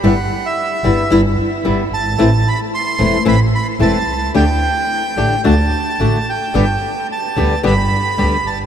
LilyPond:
<<
  \new Staff \with { instrumentName = "Bandoneon" } { \time 4/4 \key g \major \tempo 4 = 111 fis''8. e''4. r4 r16 a''8~ | a''8 b''8 c'''4 b''8 b''8 a''4 | g''2 a''4. g''8~ | g''4 a''4 b''4. a''8 | }
  \new Staff \with { instrumentName = "Nylon-string guitar" } { \time 4/4 \key g \major <g b e'>8 r4 <g b e'>8 <g b e'>8 r8 <g b e'>8 r8 | <e a c' e'>8 r4 <e a c' e'>8 <e a c' e'>8 r8 <e a c' e'>8 r8 | <d a d' g'>8 r4 <d a d' g'>8 <d a d' fis'>8 r8 <d a d' fis'>8 r8 | <d g b g'>8 r4 <d g b g'>8 <d g b g'>8 r8 <d g b g'>8 r8 | }
  \new Staff \with { instrumentName = "Double bass" } { \clef bass \time 4/4 \key g \major g,,8 r4 g,,8 g,,8 r8 g,,8 g,,8 | a,,8 r4 e,,8 a,,8 r8 e,,8 c,8 | d,8 r4 a,,8 d,8 r8 a,,8 r8 | g,,8 r4 d,8 g,,8 r8 d,8 g,,8 | }
>>